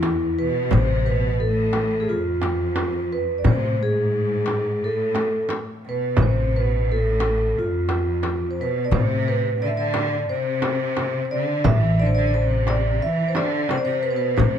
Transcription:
Already playing: cello section E2, vibraphone E4
0.03 darbuka tek, frame drum
0.20 darbuka ka
0.39 cello section B2, vibraphone B4
0.71 upright bass A1, vibraphone C5, darbuka dum, frame drum
0.75 cello section C3
1.05 vibraphone B4, darbuka ka
1.10 cello section B2
1.39 cello section A2, vibraphone A4, darbuka ka
1.73 darbuka tek, frame drum
1.92 darbuka ka
2.00 vibraphone G#4
2.09 cello section F2, vibraphone F4
2.42 darbuka tek, frame drum
2.76 darbuka tek, frame drum
2.93 darbuka ka
3.13 vibraphone B4
3.38 vibraphone D5
3.44 upright bass A2, cello section C3, vibraphone C5, frame drum, darbuka dum
3.63 darbuka ka
3.80 cello section G#2, vibraphone G#4
4.13 darbuka ka
4.29 darbuka ka
4.46 darbuka tek, frame drum
4.83 cello section A2, vibraphone A4
5.15 darbuka tek, frame drum
5.49 darbuka tek, frame drum
5.85 cello section B2, darbuka ka
5.89 vibraphone B4
6.17 upright bass A1, cello section C3, frame drum, darbuka dum
6.23 vibraphone C5
6.52 cello section B2, darbuka ka
6.56 vibraphone B4
6.85 cello section A2, darbuka ka
6.92 vibraphone A4
7.20 darbuka tek, frame drum
7.38 darbuka ka
7.55 cello section F2, vibraphone F4
7.89 darbuka tek, frame drum
8.23 darbuka tek, frame drum
8.40 darbuka ka
8.51 vibraphone C5
8.59 cello section B2, vibraphone B4
8.85 vibraphone D5
8.91 upright bass A2, cello section C3, vibraphone C5, darbuka dum, frame drum
9.26 vibraphone B4, darbuka ka
9.59 cello section D3, vibraphone D5, darbuka ka
9.67 vibraphone E5
9.76 cello section D3, vibraphone D5
9.94 darbuka tek, frame drum
10.11 darbuka ka
10.30 cello section C3, vibraphone C5
10.62 darbuka tek, frame drum
10.97 darbuka tek, frame drum
11.14 darbuka ka
11.25 vibraphone C5
11.31 cello section D3, vibraphone D5
11.64 upright bass A1, cello section E3, vibraphone E5, frame drum, darbuka dum
12.00 cello section D3, vibraphone D5, darbuka ka
12.06 vibraphone C5
12.15 cello section D3, vibraphone D5
12.27 vibraphone D5
12.34 cello section C3, vibraphone C5, darbuka ka
12.67 vibraphone D5, darbuka tek, frame drum
12.85 darbuka ka
13.02 cello section E3, vibraphone E5
13.29 vibraphone C5
13.35 cello section D3, vibraphone D5, darbuka tek, frame drum
13.69 cello section C3, vibraphone C5, darbuka tek, frame drum
13.78 vibraphone D5
13.84 cello section C3, vibraphone C5, darbuka ka
14.03 cello section B2, vibraphone B4
14.11 vibraphone C5
14.16 vibraphone B4
14.37 upright bass A2, cello section C3, vibraphone C5, frame drum, darbuka dum

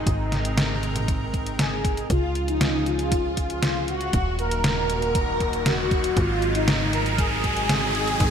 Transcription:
Already playing: analog synth pad C3 D#3 G#3 D#4, analog polysynth D#4
0.07 analog synth bass G#1, analog synth pad A#4, kick, closed hi-hat
0.32 snare, closed hi-hat
0.45 closed hi-hat
0.58 snare, closed hi-hat
0.83 closed hi-hat
0.96 closed hi-hat, mid tom
1.08 kick, closed hi-hat
1.34 kick, closed hi-hat
1.46 closed hi-hat
1.59 analog polysynth G#4, snare, closed hi-hat
1.85 kick, closed hi-hat
1.97 closed hi-hat
2.10 analog synth bass C#2, analog synth pad C#3 F3 G#3 F4 G#4, string machine F4, analog polysynth F4, kick, closed hi-hat, riser
2.35 closed hi-hat
2.48 string machine D#4, analog polysynth D#4, closed hi-hat
2.61 snare, closed hi-hat
2.86 string machine F4, analog polysynth F4, closed hi-hat
2.99 closed hi-hat
3.12 kick, closed hi-hat
3.37 kick, closed hi-hat
3.50 string machine F4, analog polysynth F4, closed hi-hat
3.63 snare, closed hi-hat
3.88 string machine F#4, analog polysynth F#4, closed hi-hat
4.01 closed hi-hat
4.13 analog synth bass D#1, analog synth pad A#2 D#3 F#3 D#4 F#4, kick, closed hi-hat
4.39 string machine A#4, analog polysynth A#4, closed hi-hat
4.51 closed hi-hat
4.64 snare, closed hi-hat
4.90 closed hi-hat
5.02 closed hi-hat
5.15 kick, closed hi-hat
5.40 kick, closed hi-hat
5.53 closed hi-hat
5.66 analog polysynth F#4, string machine F#4, snare, closed hi-hat
5.91 kick, closed hi-hat
6.04 closed hi-hat
6.17 analog synth bass G#1, analog synth pad C3 G#3, string machine F4, analog polysynth F4, kick, closed hi-hat
6.42 closed hi-hat
6.55 string machine D#4, analog polysynth D#4, closed hi-hat
6.68 snare, closed hi-hat
6.93 string machine A#4, analog polysynth A#4, closed hi-hat
7.06 closed hi-hat
7.18 analog polysynth G#4, string machine G#4, kick, closed hi-hat
7.44 kick, closed hi-hat
7.57 closed hi-hat
7.69 snare, closed hi-hat
7.95 closed hi-hat
8.08 closed hi-hat
8.20 analog synth bass G#1, kick, closed hi-hat

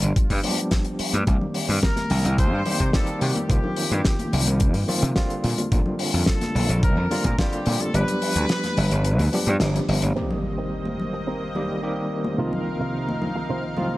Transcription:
Already playing: tine electric piano F3 G3 B3 D4 G4, trumpet section F4
0.02 slap bass G1, closed hi-hat
0.16 kick, closed hi-hat
0.30 slap bass G2, kick, open hi-hat
0.43 tine electric piano F3 G3 B3 D4 G4, open hi-hat, high conga, low conga
0.58 closed hi-hat
0.71 kick, snare, closed hi-hat
0.85 closed hi-hat
0.99 muted slap bass stroke, open hi-hat
1.13 slap bass G2, closed hi-hat, high conga
1.27 slap bass C2, tine electric piano D#3 G3 A#3 C4 G4, kick, closed hi-hat
1.41 low conga
1.54 open hi-hat
1.69 slap bass G2, open hi-hat
1.83 trumpet section A#4, kick, snare, closed hi-hat
1.96 snare, closed hi-hat, high conga
2.10 slap bass C2, open hi-hat, low conga
2.25 slap bass C2, closed hi-hat
2.38 trumpet section C5, kick, closed hi-hat
2.53 slap bass G2
2.65 tine electric piano D#3 G3 A#3 C4 G4, open hi-hat, high conga, low conga
2.80 slap bass C3, kick, closed hi-hat
2.93 tine electric piano D#3 G3 A#3 C4 G4, trumpet section A4, kick, snare, closed hi-hat
3.07 closed hi-hat
3.21 slap bass C3, trumpet section G4, open hi-hat
3.36 closed hi-hat, high conga
3.48 slap bass C2, tine electric piano D#3 F3 A#3 C4 F4, kick, closed hi-hat
3.64 low conga
3.76 open hi-hat
3.92 slap bass G2, closed hi-hat
4.05 kick, snare, closed hi-hat
4.19 closed hi-hat, high conga
4.33 slap bass C2, open hi-hat, low conga
4.47 slap bass C2, closed hi-hat
4.60 kick, closed hi-hat
4.74 slap bass G2, open hi-hat
4.88 tine electric piano D#3 F3 A#3 C4 F4, open hi-hat, high conga, low conga
5.02 slap bass C3, closed hi-hat
5.16 tine electric piano D3 G3 A#3 C4 F4, kick, snare, closed hi-hat
5.30 closed hi-hat
5.44 slap bass A#2, open hi-hat
5.58 closed hi-hat, high conga
5.71 slap bass A#1, tine electric piano D3 G3 A#3 C4 F4, kick, closed hi-hat
5.86 low conga
5.99 open hi-hat
6.13 slap bass F2, open hi-hat
6.26 trumpet section A4, kick, snare, closed hi-hat
6.41 snare, closed hi-hat, high conga
6.55 slap bass A#1, open hi-hat, low conga
6.69 slap bass A#1, closed hi-hat
6.83 trumpet section A#4, kick, closed hi-hat
6.97 slap bass F2
7.10 tine electric piano D3 G3 A#3 C4 F4, open hi-hat, high conga, low conga
7.24 slap bass A#2, trumpet section A#4, kick, closed hi-hat
7.38 tine electric piano D3 G3 A#3 C4 F4, trumpet section G4, kick, snare, closed hi-hat
7.53 closed hi-hat
7.66 slap bass A#2, open hi-hat
7.80 trumpet section A4, closed hi-hat, high conga
7.93 slap bass G1, tine electric piano F3 G3 B3 D4 G4, trumpet section B4, closed hi-hat
8.08 closed hi-hat, low conga
8.22 open hi-hat
8.36 slap bass D2, closed hi-hat
8.49 snare, closed hi-hat
8.64 snare, closed hi-hat, high conga
8.77 slap bass G1, open hi-hat, low conga
8.91 slap bass G1, closed hi-hat
9.04 closed hi-hat
9.19 slap bass D2, open hi-hat
9.32 tine electric piano F3 G3 B3 D4 G4, open hi-hat, high conga, low conga
9.46 slap bass G2, closed hi-hat
9.60 slap bass G1, snare, closed hi-hat
9.76 closed hi-hat
9.88 slap bass G1, open hi-hat
10.02 slap bass G1, closed hi-hat, high conga
10.16 tine electric piano D#3 G3 A#3 C4 G4, analog synth pad A#3 C4 D#5, clean electric guitar C4 D#4 A#4, impact
10.31 low conga
10.58 clean electric guitar C4 D#4 A#4
10.85 high conga
10.99 low conga
11.13 muted clean electric guitar stroke
11.27 clean electric guitar C4 D#4 A#4
11.55 tine electric piano D#3 G3 A#3 C4 G4, muted clean electric guitar stroke, high conga, low conga
11.83 tine electric piano D#3 G3 A#3 C4 G4
12.24 high conga
12.37 tine electric piano C2 D#3 F3 A#3 C4 F4, clean electric guitar C3 D#4 F4 A#4, analog synth pad C3 D#4 A#4 F5
12.53 low conga
12.80 clean electric guitar C3 D#4 F4 A#4
13.09 high conga
13.22 low conga
13.35 muted clean electric guitar stroke
13.49 clean electric guitar C3 D#4 F4 C5
13.77 tine electric piano C2 D#3 F3 A#3 C4 F4, muted clean electric guitar stroke, high conga, low conga

